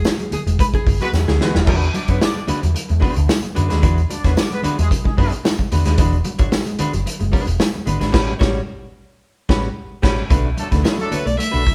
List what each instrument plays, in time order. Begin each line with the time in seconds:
Already playing: hollow-body jazz guitar G#4
0.05 snare, tambourine, muted conga
0.18 clean electric guitar F#3, closed hi-hat, high conga
0.31 hollow-body jazz guitar G#4, muted picked electric bass stroke, muted clean electric guitar stroke, closed hi-hat, muted conga, low conga
0.46 picked electric bass E1, clean electric guitar G#3, closed hi-hat
0.58 clean electric guitar G#3, hollow-body jazz guitar B4, kick, closed hi-hat, muted conga
0.74 hollow-body jazz guitar G#4, muted picked electric bass stroke, kick, closed hi-hat
0.84 picked electric bass F#1, muted clean electric guitar stroke, kick, open hi-hat, muted conga, high conga
1.01 clean electric guitar F#3, horn section G#3 B3 F#4 B4, hollow-body jazz guitar F#4, closed hi-hat
1.12 picked electric bass E2, muted clean electric guitar stroke, snare, tambourine, muted conga
1.27 picked electric bass D2, hollow-body jazz guitar G#4, snare, high conga
1.39 clean electric guitar E3, horn section G#3 B3 F#4 B4, snare, muted conga, low conga
1.55 picked electric bass D#1, clean electric guitar F#3, snare
1.66 picked electric bass E2, clean electric guitar E3, hollow-body jazz guitar G#3 D4 F#4 B4, kick, crash, muted conga, low conga
1.82 closed hi-hat
1.94 clean electric guitar F#3, horn section D4 D5, muted hollow-body jazz guitar stroke, closed hi-hat, muted conga, high conga
2.08 picked electric bass F#2, hollow-body jazz guitar G#3 D4 F#4 C#5, horn section B3 B4, muted clean electric guitar stroke, kick, closed hi-hat
2.20 horn section D4 D5, muted hollow-body jazz guitar stroke, snare, tambourine, muted conga
2.34 clean electric guitar G#3, muted hollow-body jazz guitar stroke, high conga
2.47 hollow-body jazz guitar G#3 D4 F#4 B4, muted picked electric bass stroke, muted clean electric guitar stroke, closed hi-hat, muted conga, low conga
2.61 picked electric bass E2, clean electric guitar F#3, muted hollow-body jazz guitar stroke, closed hi-hat
2.74 muted hollow-body jazz guitar stroke, muted clean electric guitar stroke, closed hi-hat, muted conga
2.89 picked electric bass E2, clean electric guitar G#3, muted hollow-body jazz guitar stroke, closed hi-hat
3.00 hollow-body jazz guitar G#3 D4 F#4 B4, horn section B3 B4, clean electric guitar B3, kick, open hi-hat, high conga
3.15 picked electric bass D2, muted hollow-body jazz guitar stroke, closed hi-hat
3.28 clean electric guitar G#3, muted hollow-body jazz guitar stroke, snare, tambourine
3.42 muted hollow-body jazz guitar stroke, muted clean electric guitar stroke, closed hi-hat, high conga
3.55 picked electric bass F#2, hollow-body jazz guitar G#3 D4 F#4 B4, closed hi-hat, low conga
3.68 picked electric bass D#2, hollow-body jazz guitar G#3 D4 F#4 B4, clean electric guitar G#3, snare, closed hi-hat
3.82 picked electric bass E2, clean electric guitar E3, hollow-body jazz guitar G#3 D4 F#4 B4, kick, closed hi-hat, low conga
3.98 closed hi-hat
4.09 clean electric guitar F#3, horn section D4 D5, muted hollow-body jazz guitar stroke, closed hi-hat, muted conga, high conga
4.24 picked electric bass E2, hollow-body jazz guitar G#3 D4 F#4 C#5, horn section B3 B4, muted clean electric guitar stroke, kick, snare, closed hi-hat
4.36 horn section D4 D5, muted hollow-body jazz guitar stroke, snare, tambourine, muted conga
4.50 clean electric guitar G#3, horn section B3 B4, muted hollow-body jazz guitar stroke, closed hi-hat, high conga
4.63 hollow-body jazz guitar G#3 D4 F#4 B4, muted clean electric guitar stroke, muted picked electric bass stroke, closed hi-hat, low conga
4.78 picked electric bass E2, clean electric guitar F#3, horn section G#3 G#4, muted hollow-body jazz guitar stroke, closed hi-hat
4.91 muted clean electric guitar stroke, muted hollow-body jazz guitar stroke, kick, closed hi-hat
5.04 clean electric guitar G#3, horn section G#3 G#4, muted hollow-body jazz guitar stroke, muted picked electric bass stroke, kick
5.17 picked electric bass F#2, hollow-body jazz guitar G#3 D4 F#4 B4, clean electric guitar B3, horn section B3 B4, kick, open hi-hat, muted conga, high conga
5.32 muted hollow-body jazz guitar stroke, closed hi-hat
5.44 clean electric guitar G#3, muted hollow-body jazz guitar stroke, snare, tambourine, muted conga
5.58 muted clean electric guitar stroke, muted hollow-body jazz guitar stroke, kick, closed hi-hat, high conga
5.71 picked electric bass E2, hollow-body jazz guitar G#3 D4 F#4 B4, closed hi-hat, low conga
5.85 picked electric bass D#2, clean electric guitar G#3, hollow-body jazz guitar G#3 D4 F#4 B4, snare, closed hi-hat
5.98 picked electric bass E1, clean electric guitar E3, hollow-body jazz guitar G#3 D4 F#4 B4, kick, closed hi-hat, muted conga, low conga
6.12 closed hi-hat
6.24 clean electric guitar F#3, muted hollow-body jazz guitar stroke, closed hi-hat, muted conga, high conga
6.39 picked electric bass G#1, hollow-body jazz guitar G#3 D4 F#4 C#5, muted clean electric guitar stroke, kick, closed hi-hat
6.52 muted hollow-body jazz guitar stroke, snare, tambourine
6.66 clean electric guitar G#3, muted hollow-body jazz guitar stroke, closed hi-hat, high conga
6.79 hollow-body jazz guitar G#3 D4 F#4 B4, muted clean electric guitar stroke, muted picked electric bass stroke, closed hi-hat, muted conga, low conga
6.93 picked electric bass F#1, clean electric guitar F#3, muted hollow-body jazz guitar stroke, closed hi-hat
7.06 muted hollow-body jazz guitar stroke, muted clean electric guitar stroke, closed hi-hat, muted conga
7.20 picked electric bass F#1, clean electric guitar G#3, muted hollow-body jazz guitar stroke, closed hi-hat
7.32 hollow-body jazz guitar G#3 D4 F#4 B4, clean electric guitar B3, kick, open hi-hat, muted conga, high conga
7.47 picked electric bass E1, muted hollow-body jazz guitar stroke, closed hi-hat
7.59 clean electric guitar G#3, muted hollow-body jazz guitar stroke, snare, tambourine, muted conga
7.74 muted hollow-body jazz guitar stroke, muted clean electric guitar stroke, high conga
7.86 picked electric bass G#1, hollow-body jazz guitar G#3 D4 F#4 B4, closed hi-hat, muted conga, low conga
7.99 picked electric bass G#1, clean electric guitar G#3, hollow-body jazz guitar G#3 D4 F#4 B4, snare, closed hi-hat
8.12 picked electric bass A1, hollow-body jazz guitar G3 C#4 F#4 B4, kick, snare, crash
8.39 picked electric bass A1, hollow-body jazz guitar G3 C#4 F#4 C#5, kick, snare
9.49 picked electric bass A1, hollow-body jazz guitar G3 C#4 F#4 B4, kick, snare
10.02 picked electric bass A1, hollow-body jazz guitar G3 C#4 F#4 B4, kick, snare, crash
10.30 picked electric bass B1, hollow-body jazz guitar A3 D4 F#4 B4, clean electric guitar B3, kick, closed hi-hat, low conga
10.56 horn section F#3 A3 D4 A4, muted hollow-body jazz guitar stroke, muted clean electric guitar stroke, closed hi-hat, high conga
10.71 picked electric bass D2, clean electric guitar A3, hollow-body jazz guitar A3 D4 F#4 B4, kick, snare, closed hi-hat
10.83 hollow-body jazz guitar A3 D4 F#4 B4, snare, tambourine, muted conga
10.97 clean electric guitar F#3, horn section F#3 A3 D4 A4, muted hollow-body jazz guitar stroke, closed hi-hat, high conga
11.11 hollow-body jazz guitar A3 D4 F#4 C#5, violin B4, muted clean electric guitar stroke, muted picked electric bass stroke, closed hi-hat, low conga
11.25 picked electric bass B1, clean electric guitar A3, violin D5, muted hollow-body jazz guitar stroke, closed hi-hat
11.38 clean electric guitar A3, violin E5, muted hollow-body jazz guitar stroke, closed hi-hat, muted conga
11.51 picked electric bass B1, hollow-body jazz guitar A3 D4 F#4 B4, closed hi-hat
11.65 muted hollow-body jazz guitar stroke, muted clean electric guitar stroke, kick, open hi-hat, muted conga, high conga